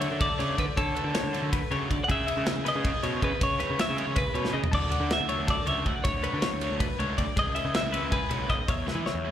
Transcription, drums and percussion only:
0.01 ride medium
0.21 kick loud
0.21 ride loud
0.40 snare soft
0.40 ride medium
0.58 kick medium
0.58 snare soft
0.58 ride medium
0.77 kick loud
0.77 ride loud
0.96 ride medium
1.15 snare loud
1.15 ride loud
1.34 snare soft
1.34 ride medium
1.53 kick loud
1.53 ride loud
1.71 ride medium
1.91 kick medium
1.91 ride medium
2.10 kick loud
2.10 ride loud
2.28 ride medium
2.46 snare loud
2.46 ride loud
2.66 snare soft
2.66 ride medium
2.85 kick loud
2.85 ride loud
3.03 snare soft
3.03 ride medium
3.22 kick medium
3.22 ride medium
3.41 kick loud
3.41 ride loud
3.60 snare soft
3.60 ride medium
3.79 snare loud
3.79 ride loud
3.98 ride medium
4.16 kick loud
4.16 ride loud
4.35 ride medium
4.45 snare medium
4.64 floor tom loud
4.73 kick loud
4.73 crash loud
4.92 ride medium
5.11 snare loud
5.11 ride loud
5.29 ride medium
5.48 kick loud
5.48 ride loud
5.67 ride medium
5.86 kick medium
5.86 ride medium
6.05 kick loud
6.05 ride loud
6.24 ride medium
6.42 snare loud
6.42 ride loud
6.61 snare soft
6.61 ride medium
6.80 kick loud
6.80 ride loud
7.00 ride medium
7.18 kick medium
7.18 ride medium
7.37 kick loud
7.37 ride loud
7.56 ride medium
7.74 snare loud
7.74 ride loud
7.94 ride medium
8.12 kick loud
8.12 ride loud
8.31 ride medium
8.50 kick medium
8.50 snare soft
8.50 ride medium
8.68 kick loud
8.68 ride loud
8.88 snare medium
9.06 snare medium

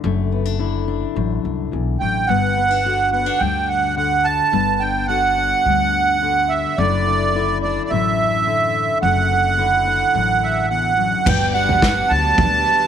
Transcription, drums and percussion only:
11.26 kick loud
11.26 floor tom loud
11.26 crash loud
11.69 floor tom medium
11.82 kick loud
11.82 snare loud
12.38 kick loud
12.38 floor tom loud

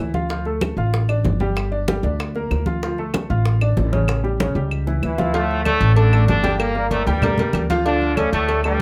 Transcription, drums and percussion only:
0.14 high bongo soft
0.14 high conga medium
0.29 high bongo medium
0.29 high conga soft
0.45 high conga soft
0.61 high bongo medium
0.61 high conga medium
0.61 claves medium
0.77 high bongo soft
0.77 high conga soft
0.93 high bongo medium
0.93 high conga soft
1.08 high bongo soft
1.08 high conga soft
1.08 claves medium
1.25 high bongo soft
1.25 low bongo medium
1.25 high conga medium
1.40 high bongo soft
1.40 high conga medium
1.56 high bongo medium
1.56 high conga soft
1.56 claves medium
1.72 high conga soft
1.88 high bongo medium
1.88 high conga medium
2.03 high bongo soft
2.03 high conga soft
2.19 high bongo medium
2.19 high conga soft
2.19 claves medium
2.35 high bongo soft
2.35 high conga soft
2.51 high bongo soft
2.51 low bongo medium
2.51 high conga soft
2.51 claves medium
2.66 high bongo soft
2.66 high conga medium
2.83 high bongo medium
2.83 high conga soft
2.98 high conga soft
3.14 high bongo medium
3.14 high conga medium
3.14 claves medium
3.30 high bongo soft
3.30 high conga soft
3.46 high bongo medium
3.46 high conga soft
3.61 high bongo soft
3.61 high conga soft
3.61 claves medium
3.77 high bongo soft
3.77 low bongo medium
3.77 high conga medium
3.93 high bongo soft
3.93 high conga medium
4.08 high bongo medium
4.08 high conga soft
4.08 claves medium
4.25 high conga soft
4.40 high bongo medium
4.40 high conga medium
4.56 high conga soft
4.71 high conga soft
4.71 claves medium
4.87 low bongo medium
4.87 high conga soft
5.03 low bongo medium
5.03 high conga soft
5.03 claves medium
5.18 low bongo medium
5.18 high conga medium
5.34 cowbell loud
5.34 high conga soft
5.51 high conga soft
5.65 cowbell medium
5.65 high conga medium
5.65 claves medium
5.81 cowbell medium
5.96 cowbell medium
5.96 high conga soft
6.13 high conga soft
6.13 claves medium
6.28 cowbell medium
6.28 high conga medium
6.44 cowbell medium
6.44 high conga medium
6.60 cowbell medium
6.60 high conga soft
6.60 claves medium
6.75 high conga soft
6.91 cowbell medium
6.91 high conga medium
7.07 cowbell medium
7.07 high conga soft
7.22 cowbell loud
7.22 high conga soft
7.22 low conga medium
7.22 claves medium
7.38 cowbell medium
7.38 high conga soft
7.38 low conga medium
7.53 cowbell medium
7.53 high conga medium
7.53 claves medium
7.70 cowbell medium
7.70 high conga medium
7.86 cowbell medium
7.86 high conga soft
8.02 high conga soft
8.17 cowbell medium
8.17 high conga medium
8.17 claves medium
8.33 cowbell medium
8.49 cowbell medium
8.49 high conga soft
8.64 high conga soft
8.64 claves medium

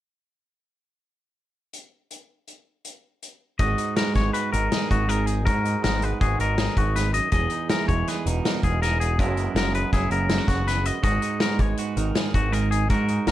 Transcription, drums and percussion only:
1.73 closed hi-hat medium
2.11 closed hi-hat medium
2.47 closed hi-hat soft
2.85 closed hi-hat medium
3.22 closed hi-hat soft
3.59 kick loud
3.59 closed hi-hat medium
3.78 closed hi-hat medium
3.96 snare medium
3.96 closed hi-hat medium
4.15 kick soft
4.15 snare soft
4.15 closed hi-hat soft
4.34 closed hi-hat medium
4.53 closed hi-hat medium
4.72 snare loud
4.72 closed hi-hat medium
4.91 kick medium
4.91 closed hi-hat medium
5.09 closed hi-hat medium
5.27 closed hi-hat medium
5.47 kick loud
5.47 closed hi-hat medium
5.65 closed hi-hat medium
5.84 snare loud
5.84 closed hi-hat medium
6.02 closed hi-hat soft
6.21 kick medium
6.21 closed hi-hat medium
6.40 closed hi-hat medium
6.58 snare loud
6.58 closed hi-hat medium
6.77 kick medium
6.77 closed hi-hat medium
6.96 snare soft
6.96 closed hi-hat medium
7.14 closed hi-hat medium
7.32 kick loud
7.32 closed hi-hat medium
7.50 closed hi-hat medium
7.69 snare loud
7.69 closed hi-hat medium
7.89 kick medium
7.89 closed hi-hat soft
8.07 snare soft
8.07 closed hi-hat medium
8.26 closed hi-hat medium
8.45 snare medium
8.45 closed hi-hat medium
8.63 kick medium
8.63 closed hi-hat medium
8.83 snare soft
8.83 closed hi-hat medium
9.01 closed hi-hat medium
9.19 kick loud
9.19 closed hi-hat medium
9.37 closed hi-hat soft
9.56 snare loud
9.56 closed hi-hat medium
9.75 closed hi-hat soft
9.93 kick medium
9.93 snare soft
9.93 closed hi-hat medium
10.11 closed hi-hat soft
10.29 snare loud
10.29 closed hi-hat medium
10.48 kick medium
10.48 snare soft
10.48 closed hi-hat medium
10.68 snare soft
10.68 closed hi-hat medium
10.85 closed hi-hat medium
11.03 kick loud
11.03 closed hi-hat medium
11.22 closed hi-hat medium
11.40 snare loud
11.40 closed hi-hat medium
11.59 kick medium
11.59 closed hi-hat soft
11.77 closed hi-hat medium
11.97 closed hi-hat medium
12.15 snare medium
12.15 closed hi-hat medium
12.34 kick medium
12.34 closed hi-hat medium
12.53 closed hi-hat medium
12.72 closed hi-hat medium
12.90 kick loud
12.90 closed hi-hat medium
13.08 closed hi-hat soft
13.27 snare loud
13.27 closed hi-hat medium

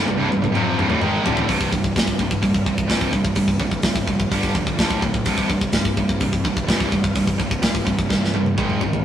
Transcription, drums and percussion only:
0.08 high tom medium
0.32 high tom medium
0.44 mid tom medium
0.55 mid tom medium
0.79 mid tom loud
0.90 mid tom medium
1.01 mid tom loud
1.26 floor tom loud
1.37 floor tom medium
1.49 kick medium
1.49 open hi-hat soft
1.61 kick medium
1.73 kick medium
1.84 kick medium
1.96 kick medium
1.96 snare loud
1.96 open hi-hat medium
2.07 kick medium
2.19 kick medium
2.31 kick medium
2.43 kick medium
2.43 open hi-hat medium
2.54 kick medium
2.66 kick medium
2.78 kick medium
2.90 kick medium
2.90 snare loud
2.90 open hi-hat medium
3.01 kick medium
3.13 kick medium
3.25 kick medium
3.35 kick medium
3.35 open hi-hat medium
3.48 kick medium
3.60 kick medium
3.71 kick medium
3.82 kick medium
3.82 snare medium
3.82 open hi-hat medium
3.96 kick medium
4.08 kick medium
4.20 kick medium
4.32 kick medium
4.32 open hi-hat medium
4.43 kick medium
4.55 kick medium
4.67 kick medium
4.79 kick medium
4.79 snare loud
4.79 open hi-hat medium
4.91 kick medium
5.02 kick medium
5.14 kick medium
5.25 kick medium
5.25 open hi-hat soft
5.38 kick medium
5.50 kick medium
5.61 kick medium
5.72 kick medium
5.72 snare loud
5.72 open hi-hat medium
5.85 kick medium
5.97 kick medium
6.09 kick medium
6.20 kick medium
6.20 open hi-hat soft
6.33 kick medium
6.45 kick medium
6.57 kick medium
6.69 kick medium
6.69 snare loud
6.69 open hi-hat medium
6.80 kick medium
6.92 kick medium
7.04 kick medium
7.15 kick medium
7.15 open hi-hat medium
7.27 kick medium
7.40 kick medium
7.51 kick medium
7.62 kick medium
7.62 snare loud
7.62 open hi-hat medium
7.75 kick medium
7.87 kick medium
7.99 kick medium
8.10 kick medium
8.10 snare medium
8.25 snare medium
8.34 high tom medium
8.46 high tom medium
8.58 kick medium
8.58 mid tom medium
8.70 mid tom medium
8.81 floor tom medium
8.93 floor tom medium

